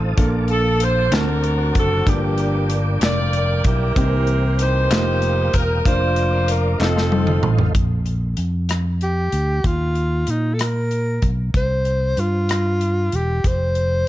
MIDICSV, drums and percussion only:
0, 0, Header, 1, 2, 480
1, 0, Start_track
1, 0, Key_signature, -2, "major"
1, 0, Tempo, 631579
1, 134, Time_signature, 6, 3, 24, 8
1, 10704, End_track
2, 0, Start_track
2, 0, Title_t, "Drums"
2, 133, Note_on_c, 9, 42, 84
2, 134, Note_on_c, 9, 36, 98
2, 209, Note_off_c, 9, 42, 0
2, 210, Note_off_c, 9, 36, 0
2, 364, Note_on_c, 9, 42, 48
2, 440, Note_off_c, 9, 42, 0
2, 610, Note_on_c, 9, 42, 84
2, 686, Note_off_c, 9, 42, 0
2, 851, Note_on_c, 9, 42, 97
2, 854, Note_on_c, 9, 39, 85
2, 864, Note_on_c, 9, 38, 106
2, 927, Note_off_c, 9, 42, 0
2, 930, Note_off_c, 9, 39, 0
2, 940, Note_off_c, 9, 38, 0
2, 1091, Note_on_c, 9, 42, 59
2, 1167, Note_off_c, 9, 42, 0
2, 1330, Note_on_c, 9, 42, 66
2, 1332, Note_on_c, 9, 36, 84
2, 1406, Note_off_c, 9, 42, 0
2, 1408, Note_off_c, 9, 36, 0
2, 1571, Note_on_c, 9, 36, 96
2, 1572, Note_on_c, 9, 42, 83
2, 1647, Note_off_c, 9, 36, 0
2, 1648, Note_off_c, 9, 42, 0
2, 1806, Note_on_c, 9, 42, 49
2, 1882, Note_off_c, 9, 42, 0
2, 2049, Note_on_c, 9, 42, 79
2, 2125, Note_off_c, 9, 42, 0
2, 2289, Note_on_c, 9, 42, 104
2, 2299, Note_on_c, 9, 39, 84
2, 2302, Note_on_c, 9, 38, 117
2, 2365, Note_off_c, 9, 42, 0
2, 2375, Note_off_c, 9, 39, 0
2, 2378, Note_off_c, 9, 38, 0
2, 2532, Note_on_c, 9, 42, 60
2, 2608, Note_off_c, 9, 42, 0
2, 2767, Note_on_c, 9, 42, 65
2, 2771, Note_on_c, 9, 36, 86
2, 2843, Note_off_c, 9, 42, 0
2, 2847, Note_off_c, 9, 36, 0
2, 3011, Note_on_c, 9, 36, 103
2, 3012, Note_on_c, 9, 42, 88
2, 3087, Note_off_c, 9, 36, 0
2, 3088, Note_off_c, 9, 42, 0
2, 3245, Note_on_c, 9, 42, 50
2, 3321, Note_off_c, 9, 42, 0
2, 3487, Note_on_c, 9, 42, 79
2, 3563, Note_off_c, 9, 42, 0
2, 3730, Note_on_c, 9, 42, 103
2, 3734, Note_on_c, 9, 39, 84
2, 3743, Note_on_c, 9, 38, 101
2, 3806, Note_off_c, 9, 42, 0
2, 3810, Note_off_c, 9, 39, 0
2, 3819, Note_off_c, 9, 38, 0
2, 3967, Note_on_c, 9, 42, 54
2, 4043, Note_off_c, 9, 42, 0
2, 4206, Note_on_c, 9, 42, 75
2, 4210, Note_on_c, 9, 36, 75
2, 4282, Note_off_c, 9, 42, 0
2, 4286, Note_off_c, 9, 36, 0
2, 4450, Note_on_c, 9, 36, 100
2, 4453, Note_on_c, 9, 42, 79
2, 4526, Note_off_c, 9, 36, 0
2, 4529, Note_off_c, 9, 42, 0
2, 4684, Note_on_c, 9, 42, 50
2, 4760, Note_off_c, 9, 42, 0
2, 4926, Note_on_c, 9, 42, 88
2, 5002, Note_off_c, 9, 42, 0
2, 5171, Note_on_c, 9, 39, 77
2, 5183, Note_on_c, 9, 38, 55
2, 5247, Note_off_c, 9, 39, 0
2, 5259, Note_off_c, 9, 38, 0
2, 5303, Note_on_c, 9, 38, 54
2, 5379, Note_off_c, 9, 38, 0
2, 5411, Note_on_c, 9, 48, 74
2, 5487, Note_off_c, 9, 48, 0
2, 5525, Note_on_c, 9, 47, 72
2, 5601, Note_off_c, 9, 47, 0
2, 5646, Note_on_c, 9, 45, 102
2, 5722, Note_off_c, 9, 45, 0
2, 5765, Note_on_c, 9, 43, 91
2, 5841, Note_off_c, 9, 43, 0
2, 5888, Note_on_c, 9, 36, 73
2, 5888, Note_on_c, 9, 42, 63
2, 5964, Note_off_c, 9, 36, 0
2, 5964, Note_off_c, 9, 42, 0
2, 6123, Note_on_c, 9, 42, 40
2, 6199, Note_off_c, 9, 42, 0
2, 6360, Note_on_c, 9, 42, 70
2, 6436, Note_off_c, 9, 42, 0
2, 6604, Note_on_c, 9, 42, 86
2, 6617, Note_on_c, 9, 37, 83
2, 6680, Note_off_c, 9, 42, 0
2, 6693, Note_off_c, 9, 37, 0
2, 6847, Note_on_c, 9, 42, 43
2, 6923, Note_off_c, 9, 42, 0
2, 7086, Note_on_c, 9, 42, 55
2, 7162, Note_off_c, 9, 42, 0
2, 7328, Note_on_c, 9, 36, 81
2, 7329, Note_on_c, 9, 42, 66
2, 7404, Note_off_c, 9, 36, 0
2, 7405, Note_off_c, 9, 42, 0
2, 7565, Note_on_c, 9, 42, 38
2, 7641, Note_off_c, 9, 42, 0
2, 7803, Note_on_c, 9, 42, 65
2, 7879, Note_off_c, 9, 42, 0
2, 8050, Note_on_c, 9, 42, 84
2, 8062, Note_on_c, 9, 37, 88
2, 8126, Note_off_c, 9, 42, 0
2, 8138, Note_off_c, 9, 37, 0
2, 8291, Note_on_c, 9, 42, 44
2, 8367, Note_off_c, 9, 42, 0
2, 8528, Note_on_c, 9, 42, 55
2, 8531, Note_on_c, 9, 36, 67
2, 8604, Note_off_c, 9, 42, 0
2, 8607, Note_off_c, 9, 36, 0
2, 8771, Note_on_c, 9, 36, 77
2, 8774, Note_on_c, 9, 42, 59
2, 8847, Note_off_c, 9, 36, 0
2, 8850, Note_off_c, 9, 42, 0
2, 9007, Note_on_c, 9, 42, 42
2, 9083, Note_off_c, 9, 42, 0
2, 9250, Note_on_c, 9, 42, 65
2, 9326, Note_off_c, 9, 42, 0
2, 9494, Note_on_c, 9, 42, 84
2, 9506, Note_on_c, 9, 37, 87
2, 9570, Note_off_c, 9, 42, 0
2, 9582, Note_off_c, 9, 37, 0
2, 9735, Note_on_c, 9, 42, 43
2, 9811, Note_off_c, 9, 42, 0
2, 9974, Note_on_c, 9, 42, 60
2, 10050, Note_off_c, 9, 42, 0
2, 10217, Note_on_c, 9, 36, 79
2, 10217, Note_on_c, 9, 42, 70
2, 10293, Note_off_c, 9, 36, 0
2, 10293, Note_off_c, 9, 42, 0
2, 10452, Note_on_c, 9, 42, 41
2, 10528, Note_off_c, 9, 42, 0
2, 10704, End_track
0, 0, End_of_file